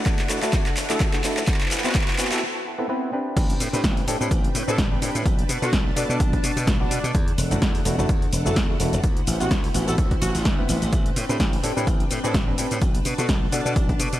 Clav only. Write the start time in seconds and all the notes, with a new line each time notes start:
Already playing: A3 D4 E4 F#4
0.29 A3 D4 E4 F#4
0.42 A3 D4 E4 F#4
0.89 A3 D4 E4 F#4
1.13 A3 D4 E4 F#4
1.24 A3 D4 E4 F#4
1.84 B3 C4 E4 F#4
2.18 B3 C4 E4 F#4
2.31 B3 C4 E4 F#4
2.78 B3 C4 E4 A4
2.89 B3 C4 E4 B4
3.13 C4 D4 G4 B4
3.36 C4 D4 G4 B4
3.73 C4 D4 G4 B4
4.07 C4 D4 G4 A4
4.21 C4 D4 G4 B4
4.68 C4 D4 G4 B4
4.91 C4 D4 G4 B4
5.02 C4 D4 G4 B4
5.62 B3 D4 F#4 A4
5.96 B3 D4 F#4 A4
6.09 B3 D4 F#4 A4
6.80 B3 D4 F#4 D5
7.51 A3 D4 E4 F#4
7.85 A3 D4 E4 F#4
7.98 A3 D4 E4 F#4
8.46 A3 D4 E4 F#4
8.69 A3 D4 E4 F#4
8.80 A3 D4 E4 F#4
9.40 B3 C4 E4 F#4
9.74 B3 C4 E4 F#4
9.87 B3 C4 E4 F#4
10.58 B3 C4 E4 B4
11.29 C4 D4 G4 B4
11.63 C4 D4 G4 A4
11.76 C4 D4 G4 B4
12.24 C4 D4 G4 B4
12.47 C4 D4 G4 B4
12.58 C4 D4 G4 B4
13.18 B3 D4 F#4 A4
13.52 B3 D4 F#4 A4
13.66 B3 D4 F#4 A4